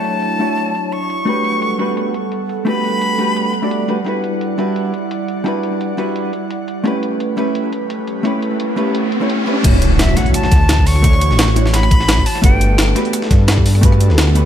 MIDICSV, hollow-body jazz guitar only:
0, 0, Header, 1, 2, 480
1, 0, Start_track
1, 0, Key_signature, 2, "major"
1, 0, Tempo, 348837
1, 1750, Time_signature, 4, 2, 24, 8
1, 19887, End_track
2, 0, Start_track
2, 0, Title_t, "Hollow-body jazz guitar"
2, 0, Program_c, 0, 26
2, 0, Note_on_c, 0, 57, 70
2, 0, Note_on_c, 0, 62, 67
2, 0, Note_on_c, 0, 66, 65
2, 0, Note_on_c, 0, 73, 83
2, 512, Note_off_c, 0, 57, 0
2, 518, Note_off_c, 0, 62, 0
2, 531, Note_off_c, 0, 66, 0
2, 537, Note_off_c, 0, 73, 0
2, 537, Note_on_c, 0, 57, 66
2, 550, Note_on_c, 0, 62, 60
2, 551, Note_on_c, 0, 64, 67
2, 558, Note_on_c, 0, 66, 68
2, 564, Note_on_c, 0, 73, 82
2, 998, Note_off_c, 0, 57, 0
2, 1001, Note_off_c, 0, 62, 0
2, 1004, Note_off_c, 0, 64, 0
2, 1007, Note_off_c, 0, 66, 0
2, 1011, Note_off_c, 0, 73, 0
2, 1724, Note_on_c, 0, 57, 75
2, 1735, Note_on_c, 0, 62, 67
2, 1749, Note_on_c, 0, 66, 67
2, 1761, Note_on_c, 0, 67, 68
2, 1773, Note_on_c, 0, 71, 82
2, 2431, Note_off_c, 0, 57, 0
2, 2436, Note_off_c, 0, 62, 0
2, 2443, Note_off_c, 0, 66, 0
2, 2449, Note_off_c, 0, 67, 0
2, 2455, Note_off_c, 0, 71, 0
2, 2457, Note_on_c, 0, 57, 76
2, 2463, Note_on_c, 0, 62, 71
2, 2469, Note_on_c, 0, 66, 71
2, 2475, Note_on_c, 0, 67, 73
2, 2482, Note_on_c, 0, 71, 80
2, 2917, Note_off_c, 0, 57, 0
2, 2920, Note_off_c, 0, 62, 0
2, 2923, Note_off_c, 0, 66, 0
2, 2926, Note_off_c, 0, 67, 0
2, 2930, Note_off_c, 0, 71, 0
2, 3644, Note_on_c, 0, 57, 77
2, 3657, Note_on_c, 0, 62, 66
2, 3669, Note_on_c, 0, 66, 66
2, 3682, Note_on_c, 0, 67, 68
2, 3694, Note_on_c, 0, 71, 83
2, 4351, Note_off_c, 0, 57, 0
2, 4357, Note_off_c, 0, 62, 0
2, 4363, Note_off_c, 0, 66, 0
2, 4369, Note_off_c, 0, 67, 0
2, 4376, Note_off_c, 0, 71, 0
2, 4377, Note_on_c, 0, 57, 78
2, 4383, Note_on_c, 0, 62, 65
2, 4389, Note_on_c, 0, 66, 66
2, 4395, Note_on_c, 0, 67, 70
2, 4402, Note_on_c, 0, 71, 85
2, 4837, Note_off_c, 0, 57, 0
2, 4840, Note_off_c, 0, 62, 0
2, 4843, Note_off_c, 0, 66, 0
2, 4846, Note_off_c, 0, 67, 0
2, 4850, Note_off_c, 0, 71, 0
2, 4985, Note_on_c, 0, 57, 71
2, 4992, Note_on_c, 0, 62, 61
2, 4998, Note_on_c, 0, 66, 63
2, 5004, Note_on_c, 0, 67, 64
2, 5011, Note_on_c, 0, 74, 74
2, 5317, Note_off_c, 0, 57, 0
2, 5321, Note_off_c, 0, 62, 0
2, 5324, Note_off_c, 0, 66, 0
2, 5327, Note_off_c, 0, 67, 0
2, 5330, Note_off_c, 0, 74, 0
2, 5337, Note_on_c, 0, 57, 81
2, 5344, Note_on_c, 0, 62, 76
2, 5350, Note_on_c, 0, 66, 68
2, 5356, Note_on_c, 0, 67, 73
2, 5363, Note_on_c, 0, 71, 85
2, 5457, Note_off_c, 0, 57, 0
2, 5460, Note_off_c, 0, 62, 0
2, 5463, Note_off_c, 0, 66, 0
2, 5466, Note_off_c, 0, 67, 0
2, 5470, Note_off_c, 0, 71, 0
2, 5565, Note_on_c, 0, 55, 74
2, 5578, Note_on_c, 0, 62, 67
2, 5590, Note_on_c, 0, 64, 67
2, 5602, Note_on_c, 0, 66, 69
2, 5615, Note_on_c, 0, 71, 81
2, 6271, Note_off_c, 0, 55, 0
2, 6278, Note_off_c, 0, 62, 0
2, 6284, Note_off_c, 0, 64, 0
2, 6289, Note_off_c, 0, 66, 0
2, 6296, Note_off_c, 0, 71, 0
2, 6299, Note_on_c, 0, 55, 74
2, 6305, Note_on_c, 0, 62, 67
2, 6310, Note_on_c, 0, 64, 70
2, 6316, Note_on_c, 0, 66, 64
2, 6328, Note_on_c, 0, 71, 76
2, 6758, Note_off_c, 0, 55, 0
2, 6761, Note_off_c, 0, 62, 0
2, 6764, Note_off_c, 0, 64, 0
2, 6768, Note_off_c, 0, 66, 0
2, 6770, Note_off_c, 0, 71, 0
2, 7485, Note_on_c, 0, 55, 77
2, 7498, Note_on_c, 0, 62, 69
2, 7511, Note_on_c, 0, 64, 72
2, 7524, Note_on_c, 0, 66, 69
2, 7536, Note_on_c, 0, 71, 84
2, 8191, Note_off_c, 0, 55, 0
2, 8198, Note_off_c, 0, 62, 0
2, 8204, Note_off_c, 0, 64, 0
2, 8210, Note_off_c, 0, 66, 0
2, 8217, Note_off_c, 0, 71, 0
2, 8218, Note_on_c, 0, 55, 75
2, 8225, Note_on_c, 0, 62, 70
2, 8231, Note_on_c, 0, 64, 70
2, 8237, Note_on_c, 0, 66, 72
2, 8244, Note_on_c, 0, 71, 88
2, 8677, Note_off_c, 0, 55, 0
2, 8681, Note_off_c, 0, 62, 0
2, 8684, Note_off_c, 0, 64, 0
2, 8687, Note_off_c, 0, 66, 0
2, 8691, Note_off_c, 0, 71, 0
2, 9406, Note_on_c, 0, 57, 75
2, 9419, Note_on_c, 0, 61, 71
2, 9431, Note_on_c, 0, 64, 70
2, 9443, Note_on_c, 0, 67, 70
2, 9456, Note_on_c, 0, 71, 88
2, 10112, Note_off_c, 0, 57, 0
2, 10118, Note_off_c, 0, 61, 0
2, 10124, Note_off_c, 0, 64, 0
2, 10130, Note_off_c, 0, 67, 0
2, 10137, Note_off_c, 0, 71, 0
2, 10138, Note_on_c, 0, 57, 80
2, 10143, Note_on_c, 0, 61, 68
2, 10154, Note_on_c, 0, 64, 64
2, 10157, Note_on_c, 0, 67, 72
2, 10164, Note_on_c, 0, 71, 88
2, 10598, Note_off_c, 0, 57, 0
2, 10601, Note_off_c, 0, 61, 0
2, 10603, Note_off_c, 0, 64, 0
2, 10607, Note_off_c, 0, 67, 0
2, 10610, Note_off_c, 0, 71, 0
2, 11326, Note_on_c, 0, 57, 81
2, 11339, Note_on_c, 0, 61, 72
2, 11351, Note_on_c, 0, 64, 69
2, 11364, Note_on_c, 0, 67, 71
2, 11376, Note_on_c, 0, 71, 84
2, 12032, Note_off_c, 0, 57, 0
2, 12038, Note_off_c, 0, 61, 0
2, 12044, Note_off_c, 0, 64, 0
2, 12051, Note_off_c, 0, 67, 0
2, 12057, Note_off_c, 0, 71, 0
2, 12059, Note_on_c, 0, 57, 79
2, 12066, Note_on_c, 0, 61, 70
2, 12072, Note_on_c, 0, 64, 75
2, 12078, Note_on_c, 0, 67, 72
2, 12085, Note_on_c, 0, 71, 88
2, 12518, Note_off_c, 0, 57, 0
2, 12522, Note_off_c, 0, 61, 0
2, 12525, Note_off_c, 0, 64, 0
2, 12528, Note_off_c, 0, 67, 0
2, 12531, Note_off_c, 0, 71, 0
2, 12667, Note_on_c, 0, 57, 72
2, 12673, Note_on_c, 0, 61, 67
2, 12679, Note_on_c, 0, 64, 63
2, 12685, Note_on_c, 0, 67, 65
2, 12692, Note_on_c, 0, 73, 84
2, 12998, Note_off_c, 0, 57, 0
2, 13001, Note_off_c, 0, 61, 0
2, 13004, Note_off_c, 0, 64, 0
2, 13007, Note_off_c, 0, 67, 0
2, 13011, Note_off_c, 0, 73, 0
2, 13018, Note_on_c, 0, 57, 84
2, 13024, Note_on_c, 0, 61, 80
2, 13036, Note_on_c, 0, 64, 64
2, 13038, Note_on_c, 0, 67, 75
2, 13044, Note_on_c, 0, 71, 95
2, 13137, Note_off_c, 0, 57, 0
2, 13141, Note_off_c, 0, 61, 0
2, 13144, Note_off_c, 0, 64, 0
2, 13147, Note_off_c, 0, 67, 0
2, 13150, Note_off_c, 0, 71, 0
2, 13246, Note_on_c, 0, 57, 85
2, 13259, Note_on_c, 0, 62, 80
2, 13271, Note_on_c, 0, 64, 78
2, 13284, Note_on_c, 0, 66, 78
2, 13296, Note_on_c, 0, 73, 93
2, 13952, Note_off_c, 0, 57, 0
2, 13958, Note_off_c, 0, 62, 0
2, 13964, Note_off_c, 0, 64, 0
2, 13971, Note_off_c, 0, 66, 0
2, 13977, Note_off_c, 0, 73, 0
2, 13978, Note_on_c, 0, 57, 88
2, 13990, Note_on_c, 0, 62, 66
2, 13992, Note_on_c, 0, 64, 81
2, 13998, Note_on_c, 0, 66, 78
2, 14005, Note_on_c, 0, 73, 91
2, 14439, Note_off_c, 0, 57, 0
2, 14441, Note_off_c, 0, 62, 0
2, 14445, Note_off_c, 0, 64, 0
2, 14447, Note_off_c, 0, 66, 0
2, 14451, Note_off_c, 0, 73, 0
2, 15166, Note_on_c, 0, 57, 85
2, 15179, Note_on_c, 0, 62, 76
2, 15192, Note_on_c, 0, 64, 81
2, 15204, Note_on_c, 0, 66, 77
2, 15211, Note_off_c, 0, 64, 0
2, 15216, Note_on_c, 0, 73, 92
2, 15872, Note_off_c, 0, 57, 0
2, 15878, Note_off_c, 0, 62, 0
2, 15891, Note_off_c, 0, 66, 0
2, 15897, Note_off_c, 0, 73, 0
2, 15898, Note_on_c, 0, 57, 84
2, 15904, Note_on_c, 0, 62, 79
2, 15908, Note_on_c, 0, 64, 79
2, 15921, Note_on_c, 0, 66, 70
2, 15923, Note_on_c, 0, 73, 92
2, 16357, Note_off_c, 0, 57, 0
2, 16360, Note_off_c, 0, 62, 0
2, 16364, Note_off_c, 0, 64, 0
2, 16366, Note_off_c, 0, 66, 0
2, 16370, Note_off_c, 0, 73, 0
2, 17086, Note_on_c, 0, 57, 90
2, 17098, Note_on_c, 0, 62, 80
2, 17111, Note_on_c, 0, 69, 80
2, 17124, Note_on_c, 0, 67, 78
2, 17136, Note_on_c, 0, 71, 96
2, 17792, Note_off_c, 0, 57, 0
2, 17798, Note_off_c, 0, 62, 0
2, 17804, Note_off_c, 0, 69, 0
2, 17810, Note_off_c, 0, 67, 0
2, 17817, Note_off_c, 0, 71, 0
2, 17819, Note_on_c, 0, 57, 89
2, 17825, Note_on_c, 0, 62, 79
2, 17832, Note_on_c, 0, 66, 81
2, 17838, Note_on_c, 0, 67, 81
2, 17845, Note_on_c, 0, 71, 94
2, 18278, Note_off_c, 0, 57, 0
2, 18281, Note_off_c, 0, 62, 0
2, 18285, Note_off_c, 0, 66, 0
2, 18287, Note_off_c, 0, 67, 0
2, 18291, Note_off_c, 0, 71, 0
2, 19006, Note_on_c, 0, 57, 85
2, 19019, Note_on_c, 0, 62, 76
2, 19031, Note_on_c, 0, 66, 77
2, 19044, Note_on_c, 0, 67, 80
2, 19055, Note_on_c, 0, 71, 96
2, 19712, Note_off_c, 0, 57, 0
2, 19718, Note_off_c, 0, 62, 0
2, 19724, Note_off_c, 0, 66, 0
2, 19731, Note_off_c, 0, 67, 0
2, 19736, Note_off_c, 0, 71, 0
2, 19740, Note_on_c, 0, 57, 87
2, 19746, Note_on_c, 0, 62, 79
2, 19752, Note_on_c, 0, 66, 78
2, 19759, Note_on_c, 0, 67, 76
2, 19765, Note_on_c, 0, 71, 96
2, 19887, Note_off_c, 0, 57, 0
2, 19887, Note_off_c, 0, 62, 0
2, 19887, Note_off_c, 0, 66, 0
2, 19887, Note_off_c, 0, 67, 0
2, 19887, Note_off_c, 0, 71, 0
2, 19887, End_track
0, 0, End_of_file